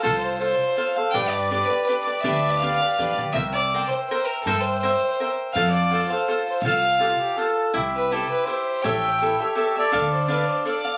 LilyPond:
<<
  \new Staff \with { instrumentName = "Cavaquinho" } { \time 3/4 \key f \major \tempo 4 = 164 <f' a' c'' f''>4 <f' a' c'' f''>4 <f' a' c'' f''>8 <a' c'' f''>8 | <d' g' b' d''>4 <d' g' b' d''>8 <g' b' d''>8 <d' g' b' d''>8 <g' b' d''>8 | <d' g' b' d''>4 <d' g' b' d''>8 <g' b' d''>8 <d' g' b' d''>8 <g' b' d''>8 | <bes' c'' e'' g''>4 <bes' c'' e'' g''>4 <bes' c'' e'' g''>4 |
<bes' c'' e'' g''>4 <bes' c'' e'' g''>4 <bes' c'' e'' g''>4 | <f' a' c'' f''>4 <f' a' c'' f''>8 <a' c'' f''>8 <f' a' c'' f''>4 | <f' a' c'' f''>4 <f' a' c'' f''>4 <f' a' c'' f''>4 | \key c \major <e' g' c'' e''>4 <e' g' c'' e''>4 <e' g' c'' e''>4 |
<g' a' cis'' e''>4 <g' a' cis'' e''>8 <a' cis'' e''>8 <g' a' cis'' e''>8 <a' cis'' e''>8 | <d' a' d'' f''>4 <d' a' d'' f''>4 <d' a' d'' f''>8 <a' d'' f''>8 | }
  \new Staff \with { instrumentName = "Violin" } { \time 3/4 \key f \major a'8 c''8 c''4. r8 | g''8 d''4 b'8 b'8 d''8 | e''8. d''16 f''4. r8 | e''8 d''4 c''8 c''8 bes'8 |
a'8 c''8 c''4. r8 | f''8 d''4 c''8~ \tuplet 3/2 { c''4 c''8 } | f''2 r4 | \key c \major r8 b'8 a'8 b'8 c''4 |
g''4. r4. | r8 c''8 b'16. d''32 c''8 d''4 | }
  \new Staff \with { instrumentName = "Trumpet" } { \time 3/4 \key f \major r2. | r2. | r2. | r2. |
r2. | r2. | r4 g'16 f'16 g'8 a'4 | \key c \major r2. |
r4 e'8 g'4 d''8~ | d''16 r2 r8. | }
  \new Staff \with { instrumentName = "Upright bass" } { \clef bass \time 3/4 \key f \major c,2 r4 | g,2 r4 | d,2 e,8 d,8 | c,2 r4 |
g,2 r4 | f,2 r4 | c,2 r4 | \key c \major c,2 r4 |
a,,2 r4 | d,2 r4 | }
>>